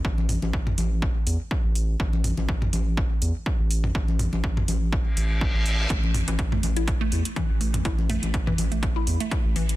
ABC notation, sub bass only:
X:1
M:4/4
L:1/16
Q:"Swing 16ths" 1/4=123
K:Cmix
V:1 name="Sub bass" clef=bass
A,,,3 A,,,3 A,,,3 z E,, z2 A,,,3 | A,,,3 A,,,3 A,,,3 z E,, z2 A,,,3 | A,,,3 A,,,3 A,,,3 z A,,,3 A,,,3 | A,,,3 A,,,3 A,,,3 z E,, z2 A,,,3 |
A,,,3 A,,,3 A,,,3 z E,, z2 A,,,3 |]